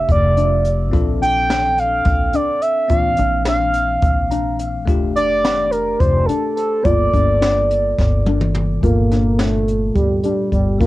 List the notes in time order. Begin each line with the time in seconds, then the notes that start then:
Already playing: A3 D4 G4 E5
0.09 F1 D5, kick, closed hi-hat
0.37 D4, closed hi-hat
0.65 closed hi-hat
0.92 A#1 C4 D4 F4 A4, kick, closed hi-hat
1.22 D4 G5, closed hi-hat
1.50 D4, snare, closed hi-hat
1.78 F5, closed hi-hat
2.05 A#1, kick, snare, closed hi-hat
2.33 D4 D5, closed hi-hat
2.62 E5, closed hi-hat
2.88 A#1 E3 C4 D4 F4 F5, kick, closed hi-hat
3.17 A#1 D4, closed hi-hat
3.45 D4 F5, snare, closed hi-hat
3.74 closed hi-hat
4.02 A#1, kick, closed hi-hat
4.31 D4 A#5, closed hi-hat
4.59 F5, closed hi-hat
4.85 F1 A3 D4 F4 G4, kick, closed hi-hat
5.15 D4 D5, closed hi-hat
5.44 D4, snare, closed hi-hat
5.71 A#4, closed hi-hat
5.99 F1 C5, kick, closed hi-hat
6.26 D4 A4, closed hi-hat
6.55 A4, closed hi-hat
6.83 G1 A#3 F4 A4 D5, kick, closed hi-hat
7.13 G1 D4, kick, closed hi-hat
7.41 D4, snare, closed hi-hat
7.71 closed hi-hat
7.98 G1, kick, snare
8.26 D4, high tom
8.41 mid tom
8.55 mid tom
8.81 G1 A#2 A#3 F4 A4, kick, closed hi-hat
9.12 D4, snare, closed hi-hat
9.39 A3 D4, snare, closed hi-hat
9.68 closed hi-hat
9.95 G1 G3, kick, closed hi-hat
10.23 G3 D4, closed hi-hat
10.52 G1 G3, kick, closed hi-hat
10.78 A#1 G3 A#3 C4 D4 F4, kick, closed hi-hat